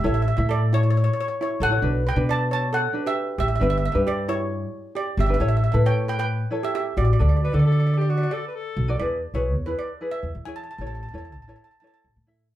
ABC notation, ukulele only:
X:1
M:4/4
L:1/16
Q:1/4=134
K:Amix
V:1 name="Ukulele"
[EAc]2 z [EAe]4- [EAe] z6 z [EAc] | [DFB]2 z [DFB]4 z3 [DFB]4 z2 | [DGB]2 z [DGB]4- [DGB] z6 z [DGB] | [EAc]2 z [EAB]4 z3 [EAc]4 z2 |
[FAd]2 z [FAd]4- [FAd] z6 z [FAd] | [E^GB]2 z [EGB]2 z [EGB]2 z [EGB]2 z2 [EGc]2 z | [EAc]2 z [EAc]2 z [EAc]2 z [EAc]2 z2 [EAe]2 z |]